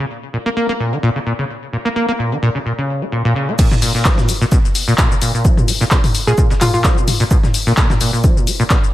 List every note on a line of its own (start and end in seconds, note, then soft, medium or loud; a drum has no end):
0.33 0.37 A#2 medium
0.46 0.49 A#3 loud
0.57 0.67 A#3 loud
0.69 0.73 A#3 loud
0.80 0.94 A#2 medium
0.92 0.98 D#3 loud
1.03 1.10 A#2 loud
1.16 1.19 C#3 medium
1.26 1.33 A#2 medium
1.39 1.45 C#3 medium
1.73 1.77 A#2 medium
1.85 1.89 A#3 medium
1.96 2.06 A#3 loud
2.08 2.12 A#3 loud
2.19 2.33 A#2 medium
2.32 2.38 D#3 loud
2.42 2.49 A#2 loud
2.55 2.59 C#3 medium
2.66 2.73 A#2 medium
2.78 3.03 C#3 medium
3.02 3.05 A#3 medium
3.12 3.23 A#2 medium
3.25 3.34 A#2 loud
3.36 3.50 C#3 medium
3.48 3.54 A#3 medium
3.59 3.69 A#2 medium
3.59 kick loud
3.59 crash loud
3.59 shaker medium
3.59 shaker soft
3.71 3.75 B2 medium
3.71 snare soft
3.71 mid tom medium
3.71 shaker soft
3.82 3.92 A#2 medium
3.82 open hi-hat loud
3.82 shaker medium
3.95 4.07 A#2 medium
3.95 snare soft
3.95 shaker soft
4.05 4.19 F3 medium
4.05 kick loud
4.05 snare loud
4.05 clap loud
4.05 shaker medium
4.05 shaker soft
4.18 4.30 A#2 medium
4.18 snare medium
4.18 mid tom medium
4.18 shaker soft
4.29 4.33 G#3 medium
4.29 open hi-hat loud
4.29 shaker medium
4.41 4.45 A#2 loud
4.41 shaker soft
4.52 4.59 B2 medium
4.52 kick loud
4.52 shaker medium
4.52 shaker soft
4.65 shaker soft
4.75 open hi-hat loud
4.75 shaker medium
4.88 4.94 A#2 loud
4.88 shaker soft
4.98 5.09 A#2 medium
4.98 kick loud
4.98 snare loud
4.98 clap loud
4.98 shaker medium
4.98 shaker soft
5.11 5.14 B2 medium
5.11 shaker soft
5.22 5.32 A#2 medium
5.22 open hi-hat loud
5.22 shaker medium
5.34 5.46 A#2 medium
5.34 shaker soft
5.45 5.59 F3 medium
5.45 kick loud
5.45 shaker medium
5.45 shaker soft
5.57 5.70 A#2 medium
5.57 mid tom medium
5.57 shaker soft
5.68 5.72 G#3 medium
5.68 open hi-hat loud
5.68 shaker medium
5.81 5.84 A#2 loud
5.81 snare soft
5.81 shaker soft
5.91 5.98 B2 medium
5.91 kick loud
5.91 snare loud
5.91 clap loud
5.91 shaker medium
5.91 shaker soft
6.04 open hi-hat medium
6.04 mid tom medium
6.04 shaker soft
6.15 open hi-hat loud
6.15 shaker medium
6.27 6.33 A#2 loud
6.27 6.38 G#4 medium
6.27 shaker soft
6.38 6.48 A#2 medium
6.38 kick loud
6.38 shaker medium
6.38 shaker soft
6.50 6.54 B2 medium
6.50 snare medium
6.50 shaker soft
6.61 6.72 A#2 medium
6.61 6.69 F4 medium
6.61 clap medium
6.61 open hi-hat loud
6.61 mid tom medium
6.61 shaker medium
6.74 6.86 A#2 medium
6.74 6.81 F4 medium
6.74 shaker soft
6.84 6.98 F3 medium
6.84 kick loud
6.84 snare loud
6.84 clap loud
6.84 shaker medium
6.84 shaker soft
6.97 7.09 A#2 medium
6.97 shaker soft
7.08 7.12 G#3 medium
7.08 open hi-hat loud
7.08 mid tom medium
7.08 shaker medium
7.20 7.24 A#2 loud
7.20 closed hi-hat soft
7.20 shaker soft
7.31 7.38 B2 medium
7.31 kick loud
7.31 shaker medium
7.31 shaker soft
7.43 snare soft
7.43 mid tom medium
7.43 shaker soft
7.54 open hi-hat loud
7.54 shaker medium
7.67 7.73 A#2 loud
7.67 snare soft
7.67 shaker soft
7.77 7.88 A#2 medium
7.77 kick loud
7.77 snare loud
7.77 clap loud
7.77 shaker medium
7.77 shaker soft
7.90 7.94 B2 medium
7.90 snare medium
7.90 mid tom medium
7.90 shaker soft
8.01 8.11 A#2 medium
8.01 open hi-hat loud
8.01 shaker medium
8.13 8.25 A#2 medium
8.13 shaker soft
8.24 8.38 F3 medium
8.24 kick loud
8.24 shaker medium
8.24 shaker soft
8.36 8.49 A#2 medium
8.36 shaker soft
8.47 8.51 G#3 medium
8.47 open hi-hat loud
8.47 shaker medium
8.60 8.63 A#2 loud
8.60 shaker soft
8.70 8.77 B2 medium
8.70 kick loud
8.70 snare loud
8.70 clap loud
8.70 shaker medium
8.70 shaker soft
8.84 shaker soft